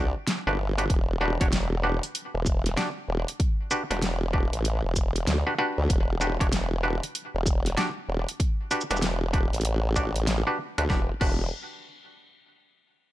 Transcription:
Already playing: C#2 D4 F#4 G4 D5
0.27 snare, closed hi-hat
0.47 G1 D4 F#4 G4 B4
0.78 D4 F#4 G4 B4, closed hi-hat
0.90 E1, kick, closed hi-hat
1.21 D4 F#4 G4 B4
1.41 E1 D4 F#4 G4 C#5, kick, closed hi-hat
1.53 snare, closed hi-hat
1.83 D4 F#4 G4 B4
2.03 closed hi-hat
2.15 closed hi-hat
2.35 E1
2.46 kick, closed hi-hat, shaker
2.66 snare, closed hi-hat
2.77 D4 F#4 G4 D5, snare, closed hi-hat
3.08 E1
3.28 closed hi-hat
3.40 kick, closed hi-hat
3.71 D4 F#4 G4 B4, shaker
3.90 E1 D4 F#4 G4 B4, snare, closed hi-hat
4.02 snare, closed hi-hat
4.33 D4 F#4 G4 B4, kick
4.53 A1, closed hi-hat
4.65 closed hi-hat
4.84 E1
4.96 kick, closed hi-hat, shaker
5.16 closed hi-hat
5.27 D2, snare, closed hi-hat
5.47 D4 F#4 G4 B4
5.59 D4 F#4 G4 B4
5.78 D2
5.90 E1, kick, closed hi-hat
6.21 D4 F#4 G4 B4, shaker
6.40 E1 D4 F#4 G4 C#5, kick, closed hi-hat
6.52 snare, closed hi-hat
6.83 D4 F#4 G4 B4
7.03 closed hi-hat
7.15 closed hi-hat
7.35 E1
7.46 kick, closed hi-hat, shaker
7.66 snare, closed hi-hat
7.77 D4 F#4 G4 D5, snare, closed hi-hat
8.09 E1
8.29 closed hi-hat
8.40 kick, closed hi-hat
8.71 D4 F#4 G4 B4, closed hi-hat, shaker
8.81 shaker
8.91 E1 D4 F#4 G4 B4, snare, closed hi-hat, shaker
8.97 shaker
9.02 snare, closed hi-hat
9.33 D4 F#4 G4 B4, kick, closed hi-hat
9.53 A1, closed hi-hat
9.61 closed hi-hat
9.65 closed hi-hat
9.96 D4 F#4 G4 D5, kick, closed hi-hat, shaker
10.16 closed hi-hat
10.27 snare, closed hi-hat
10.47 D4 F#4 G4 B4
10.78 D2 D4 F#4 G4 B4, closed hi-hat
10.90 E1 D4 F#4 G4 B4, kick, snare
11.21 E1 D4 F#4 G4 B4, kick, crash

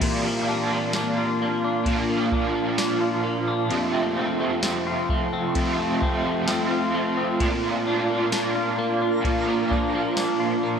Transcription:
Already playing: G3 A#3 E4
0.00 A#2 F3 A#3 D4 F4, kick, crash, ride
0.25 A#3
0.45 D4 F4
0.50 A#3
0.72 A#3
0.93 D4, snare, ride, tambourine
1.18 F4
1.42 A#3
1.64 D4
1.83 A#2 F3, kick, ride
1.88 A#3 D4 F4
2.10 A#3
2.32 D4, kick
2.55 A#3
2.78 D4, snare, ride, tambourine
3.01 F4
3.24 A#3
3.48 D4
3.69 F2 C3 F3 A3 C4 F4, ride
3.74 A3 C4 F4
3.94 A3
4.17 C4
4.40 A3
4.63 C4, snare, ride, tambourine
4.87 F4
5.09 A3, kick
5.33 C4
5.54 F2 C3 F3 A3 C4 F4, kick, ride
5.79 A3
6.02 C4, kick
6.25 A3
6.47 F3 A3 C4, snare, ride, tambourine
6.52 F4
6.71 F4
6.94 A3
7.17 C4
7.39 A#2 F3 A#3 D4, kick, ride
7.43 F4
7.64 A#3
7.85 D4 F4
7.90 A#3
8.09 A#3
8.31 D4 A#4, snare, ride, tambourine
8.55 F4
8.78 A#3
9.02 D4
9.21 A#2 F3, kick, ride
9.26 A#3 D4 F4
9.48 A#3
9.71 D4, kick
9.95 A#3
10.17 D4, snare, ride, tambourine
10.40 F4
10.63 A#3

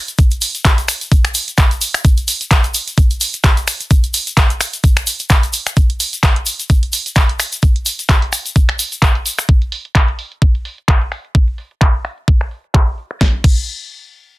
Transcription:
0.08 closed hi-hat, shaker
0.18 kick, closed hi-hat, shaker
0.31 closed hi-hat, shaker
0.41 open hi-hat, shaker
0.55 closed hi-hat, shaker
0.65 kick, clap, closed hi-hat, shaker
0.78 closed hi-hat, shaker
0.88 finger snap, open hi-hat, shaker
1.01 closed hi-hat, shaker
1.12 kick, closed hi-hat, shaker
1.25 finger snap, closed hi-hat, shaker
1.34 open hi-hat, shaker
1.48 closed hi-hat, shaker
1.58 kick, clap, closed hi-hat, shaker
1.71 closed hi-hat, shaker
1.81 open hi-hat, shaker
1.94 finger snap, closed hi-hat, shaker
2.05 kick, closed hi-hat, shaker
2.17 closed hi-hat, shaker
2.28 open hi-hat, shaker
2.41 closed hi-hat, shaker
2.51 kick, clap, closed hi-hat, shaker
2.64 closed hi-hat, shaker
2.74 open hi-hat, shaker
2.87 closed hi-hat, shaker
2.97 kick, closed hi-hat, shaker
3.10 closed hi-hat, shaker
3.21 open hi-hat, shaker
3.33 closed hi-hat, shaker
3.44 kick, clap, closed hi-hat, shaker
3.57 closed hi-hat, shaker
3.67 finger snap, open hi-hat, shaker
3.80 closed hi-hat, shaker
3.91 kick, closed hi-hat, shaker
4.04 closed hi-hat, shaker
4.14 open hi-hat, shaker
4.27 closed hi-hat, shaker
4.37 kick, clap, closed hi-hat, shaker
4.50 closed hi-hat, shaker
4.61 finger snap, open hi-hat, shaker
4.73 closed hi-hat, shaker
4.84 kick, closed hi-hat, shaker
4.96 finger snap, closed hi-hat, shaker
5.07 open hi-hat, shaker
5.19 closed hi-hat, shaker
5.30 kick, clap, closed hi-hat, shaker
5.43 closed hi-hat, shaker
5.53 open hi-hat, shaker
5.66 finger snap, closed hi-hat, shaker
5.77 kick, closed hi-hat, shaker
5.90 closed hi-hat
6.00 open hi-hat, shaker
6.13 closed hi-hat, shaker
6.23 kick, clap, closed hi-hat, shaker
6.36 closed hi-hat
6.46 open hi-hat, shaker
6.60 closed hi-hat, shaker
6.70 kick, closed hi-hat, shaker
6.83 closed hi-hat
6.93 open hi-hat, shaker
7.06 closed hi-hat, shaker
7.16 kick, clap, closed hi-hat, shaker
7.29 closed hi-hat
7.40 finger snap, open hi-hat, shaker
7.52 closed hi-hat, shaker
7.62 kick, closed hi-hat, shaker
7.76 closed hi-hat
7.86 open hi-hat, shaker
7.99 closed hi-hat, shaker
8.09 kick, clap, closed hi-hat, shaker
8.22 closed hi-hat
8.33 finger snap, open hi-hat, shaker
8.46 closed hi-hat, shaker
8.56 kick, closed hi-hat, shaker
8.69 finger snap, closed hi-hat
8.79 open hi-hat, shaker
8.92 closed hi-hat, shaker
9.02 kick, clap, closed hi-hat, shaker
9.15 closed hi-hat
9.26 open hi-hat, shaker
9.38 finger snap, closed hi-hat, shaker
9.49 kick, closed hi-hat
9.62 closed hi-hat
9.72 open hi-hat
9.85 closed hi-hat
9.95 kick, clap, closed hi-hat
10.08 closed hi-hat
10.19 open hi-hat
10.32 closed hi-hat
10.42 kick, closed hi-hat
10.55 closed hi-hat
10.65 open hi-hat
10.78 closed hi-hat
10.88 kick, clap
11.01 closed hi-hat
11.12 finger snap, open hi-hat
11.25 closed hi-hat
11.35 kick
11.48 closed hi-hat
11.58 open hi-hat
11.71 closed hi-hat
11.81 kick, clap
12.05 finger snap, open hi-hat
12.18 closed hi-hat
12.28 kick
12.41 finger snap, closed hi-hat
12.51 open hi-hat
12.64 closed hi-hat
12.74 kick, clap
12.98 open hi-hat
13.11 finger snap, closed hi-hat
13.21 kick, snare
13.44 kick, crash

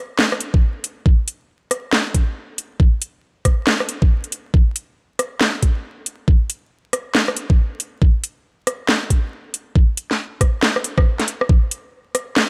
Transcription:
0.19 snare
0.32 cross-stick
0.41 closed hi-hat
0.54 kick
0.84 closed hi-hat
1.06 kick
1.28 closed hi-hat
1.71 cross-stick, closed hi-hat
1.93 snare
2.14 kick, closed hi-hat
2.58 closed hi-hat
2.80 kick
3.02 closed hi-hat
3.45 kick, cross-stick, closed hi-hat
3.67 snare
3.80 cross-stick
3.89 closed hi-hat
4.02 kick
4.24 closed hi-hat
4.32 closed hi-hat
4.54 kick
4.76 closed hi-hat
5.19 cross-stick, closed hi-hat
5.41 snare
5.63 kick, closed hi-hat
6.06 closed hi-hat
6.28 kick
6.50 closed hi-hat
6.93 cross-stick, closed hi-hat
7.15 snare
7.28 cross-stick
7.37 closed hi-hat
7.50 kick
7.80 closed hi-hat
8.02 kick
8.24 closed hi-hat
8.67 cross-stick, closed hi-hat
8.89 snare
9.10 kick, closed hi-hat
9.54 closed hi-hat
9.76 kick
9.97 closed hi-hat
10.11 snare
10.41 kick, cross-stick, closed hi-hat
10.63 snare
10.76 cross-stick
10.84 closed hi-hat
10.98 kick, cross-stick
11.20 snare, closed hi-hat
11.28 closed hi-hat
11.41 cross-stick
11.49 kick
11.71 closed hi-hat
12.15 cross-stick, closed hi-hat
12.36 snare

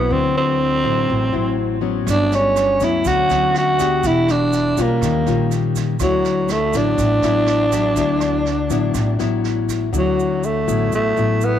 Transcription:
Already playing: F#3 B3 C4 E4
0.10 D2 D3 C4
0.37 C4
0.84 A1 F#3 C4 E4
1.08 A1 A2
1.32 A1 F#3 C4 E4
1.81 F#3 B3 C#4
2.06 G1 G2 D4, kick, cross-stick, snare, shaker
2.32 C#4, snare, shaker
2.56 cross-stick, snare, shaker
2.80 D2 F#3 B3 C#4 E4, kick, snare, shaker
3.04 D2 D3 F#4, kick, snare, shaker
3.30 D2 F#3 B3 C#4, snare, shaker
3.54 F#4, cross-stick, snare
3.79 B3 D4 G4, kick, snare, shaker
4.03 E1 E3 E4, kick, snare, shaker
4.28 D4, cross-stick, snare, shaker
4.53 snare, shaker
4.77 B1 G3 C#4 F4, kick, snare, shaker
4.82 A#3
5.02 D#2 D#3, kick, cross-stick, snare, shaker
5.26 A#1 G3 C#4 F4, snare, shaker
5.51 snare, shaker
5.75 kick, snare, shaker
6.00 D2 D3 F#3 B3 E4, kick, cross-stick, snare, shaker
6.24 snare, shaker
6.49 A3, cross-stick, snare, shaker
6.73 A1 F#3 B3 D4 E4, kick, snare, shaker
6.98 A1 A2, kick, snare, shaker
7.22 A1 F#3 B3 E4, snare, shaker
7.46 cross-stick, snare
7.71 F#3 B3 E4, kick, snare, shaker
7.96 D2 D3 F#3 B3 E4, kick, snare, shaker
8.20 cross-stick, snare, shaker
8.45 snare
8.70 A1 F#3 B3 E4, kick, snare, shaker
8.94 A1 A2, kick, cross-stick, snare, shaker
9.19 A1 F#3 B3 E4, snare, shaker
9.44 snare
9.69 kick, snare, shaker
9.93 D2 D3 F#3 B3 E4, shaker
9.98 F#3
10.20 shaker
10.43 A3, shaker
10.67 A1 F#3 B3 E4, shaker
10.92 A1 A2 A3, shaker
11.17 A1 F#3 B3 E4, shaker
11.41 B3, shaker

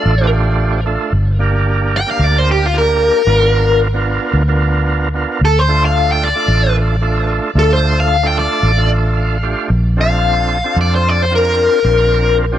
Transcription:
Already playing: A3 D4 F4 A4 D5
0.06 A1
0.20 A3 D4 F4 G4
0.86 A3 D4 F4 A4
1.13 G1
1.39 A#3 D4 G4 A#4
1.97 G5
2.07 A#3 D4 G4 A#4
2.11 F5
2.19 D2
2.24 D5
2.38 C5
2.51 G4
2.66 F4
2.73 A#3 D4 G4 A#4
2.78 A#4
3.26 G#1 B3 D4 F4 A#4
3.94 B3 D4 F4 A#4
4.34 D2
4.48 B3 D4 F4 A#4
5.14 B3 D4 F4 A#4
5.41 D2 A4
5.59 C5
5.68 A3 D4 F4 A4
5.85 F5
6.12 G5
6.24 D5
6.35 A3 D4 F4 A4
6.48 A1
7.01 A3 D4 F4 A4
7.55 D2 A3 D4 F4 A4
7.73 C5
8.00 F5
8.23 A3 D4 F4 A4
8.27 G5
8.39 D5
8.63 A1
8.77 A3 D4 F4 A4
9.17 F5
9.43 A3 D4 F4 G4
9.70 A#1
9.97 C4 D4 F4 A4
10.01 F5
10.64 C4 D4 F4 A4
10.76 F2
10.81 D5
10.95 C5
11.09 D5
11.22 C5
11.31 C4 D4 F4 A#4
11.35 A#4
11.84 A#1 C4 D4 F4 A#4
12.52 C4 D4 F4 G4

